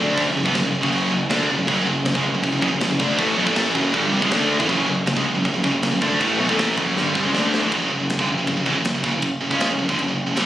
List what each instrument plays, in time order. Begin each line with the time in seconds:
Already playing: distorted electric guitar D3
0.00 picked electric bass D2, distorted electric guitar A3 D4
0.17 kick, crash
0.26 picked electric bass F#1, distorted electric guitar F#2 C#3
0.35 picked electric bass F#1, distorted electric guitar F#2 C#3
0.44 picked electric bass E2, distorted electric guitar E3 B3, kick
0.53 picked electric bass F#1, distorted electric guitar F#2 C#3, snare, crash
0.63 picked electric bass F#1, distorted electric guitar F#2 C#3
0.82 picked electric bass F#1, distorted electric guitar F#2 C#3 F#3, kick
0.92 crash
1.11 picked electric bass F#1, distorted electric guitar F#2 C#3
1.29 picked electric bass D2, distorted electric guitar D3 A3 D4, snare, crash
1.49 picked electric bass F#1, distorted electric guitar F#2 C#3
1.58 picked electric bass F#1, distorted electric guitar F#2 C#3
1.67 picked electric bass F#1, distorted electric guitar F#2 C#3 F#3, kick, crash
1.85 picked electric bass F#1, distorted electric guitar F#2 C#3
2.04 picked electric bass F#1, distorted electric guitar F#2 C#3, snare, crash
2.13 picked electric bass C#2, distorted electric guitar C#3 G#3, kick
2.23 picked electric bass F#1, distorted electric guitar F#2 C#3
2.33 picked electric bass F#1, distorted electric guitar F#2 C#3
2.42 picked electric bass F#1, distorted electric guitar F#2 C#3, kick, crash
2.52 picked electric bass F#1, distorted electric guitar F#2 C#3
2.61 picked electric bass F#1, distorted electric guitar F#2 C#3, kick
2.71 picked electric bass F#1, distorted electric guitar F#2 C#3
2.81 picked electric bass F#1, distorted electric guitar F#2 C#3, snare, crash
2.89 picked electric bass F#1, distorted electric guitar F#2 C#3
2.99 picked electric bass D2, distorted electric guitar D3 A3 D4, kick
3.17 picked electric bass A1, distorted electric guitar A2 E3 A3, kick, crash
3.36 picked electric bass B1, distorted electric guitar B2 F#3
3.46 picked electric bass A1, distorted electric guitar A2 E3 A3, kick
3.56 snare, crash
3.74 picked electric bass F#1, distorted electric guitar F#2 C#3 F#3, kick
3.93 picked electric bass G1, distorted electric guitar G2 D3 G3, kick, crash
4.12 picked electric bass C2, distorted electric guitar C3 G3
4.21 picked electric bass C#2, distorted electric guitar C#3 G#3, kick
4.31 picked electric bass D2, distorted electric guitar D3 A3 D4, snare, crash
4.59 picked electric bass A1, distorted electric guitar A2 E3, kick
4.69 picked electric bass F#1, distorted electric guitar F#2 C#3 F#3, kick, crash
4.88 picked electric bass F#1, distorted electric guitar F#2 C#3
5.07 picked electric bass F#1, distorted electric guitar F#2 C#3, snare, crash
5.16 picked electric bass C#2, distorted electric guitar C#3 G#3, kick
5.25 picked electric bass F#1, distorted electric guitar F#2 C#3
5.35 picked electric bass F#1, distorted electric guitar F#2 C#3
5.43 picked electric bass F#1, distorted electric guitar F#2 C#3, kick, crash
5.55 picked electric bass F#1, distorted electric guitar F#2 C#3
5.64 picked electric bass F#1, distorted electric guitar F#2 C#3, kick
5.73 picked electric bass F#1, distorted electric guitar F#2 C#3
5.82 picked electric bass F#1, distorted electric guitar F#2 C#3, snare, crash
5.92 picked electric bass F#1, distorted electric guitar F#2 C#3
6.01 picked electric bass D2, distorted electric guitar D3 A3 D4, kick
6.20 picked electric bass A1, distorted electric guitar A2 E3 A3, kick, crash
6.39 picked electric bass B1, distorted electric guitar B2 F#3
6.49 picked electric bass A1, distorted electric guitar A2 E3 A3, kick
6.59 snare, crash
6.77 picked electric bass F#1, distorted electric guitar F#2 C#3 F#3, kick
6.96 picked electric bass G1, distorted electric guitar G2 D3 G3, snare
7.15 picked electric bass C2, distorted electric guitar C3 G3, kick
7.24 picked electric bass C#2, distorted electric guitar C#3 G#3
7.34 picked electric bass D2, distorted electric guitar D3 A3 D4, snare
7.54 snare
7.62 picked electric bass A1, distorted electric guitar A2 E3
7.72 picked electric bass F#1, distorted electric guitar F#2 C#3 F#3, kick, ride bell
7.91 picked electric bass F#1, distorted electric guitar F#2 C#3
8.00 picked electric bass F#1, distorted electric guitar F#2 C#3
8.10 snare, ride bell
8.19 picked electric bass G1, distorted electric guitar G2 D3, kick
8.29 picked electric bass F#1, distorted electric guitar F#2 C#3
8.38 picked electric bass F#1, distorted electric guitar F#2 C#3
8.47 picked electric bass F#1, distorted electric guitar F#2 C#3, kick, ride bell
8.57 picked electric bass F#1, distorted electric guitar F#2 C#3
8.66 picked electric bass A1, distorted electric guitar A2 E3, kick
8.75 picked electric bass F#1, distorted electric guitar F#2 C#3
8.85 snare, ride bell
8.94 picked electric bass F#1, distorted electric guitar F#2 C#3
9.04 picked electric bass F#1, distorted electric guitar F#2 C#3, kick
9.13 picked electric bass F#1, distorted electric guitar F#2 C#3
9.22 kick, ride bell
9.41 picked electric bass F#1, distorted electric guitar F#2 C#3
9.50 picked electric bass C#2, distorted electric guitar C#3 G#3 C#4, kick
9.60 snare, ride bell
9.69 picked electric bass F#1, distorted electric guitar F#2 C#3
9.79 picked electric bass F#1, distorted electric guitar F#2 C#3
9.89 picked electric bass G1, distorted electric guitar G2 D3, kick
9.98 picked electric bass F#1, distorted electric guitar F#2 C#3, ride bell
10.07 picked electric bass F#1, distorted electric guitar F#2 C#3
10.26 picked electric bass F#1, distorted electric guitar F#2 C#3
10.35 picked electric bass C2, distorted electric guitar C3 G3, snare, ride bell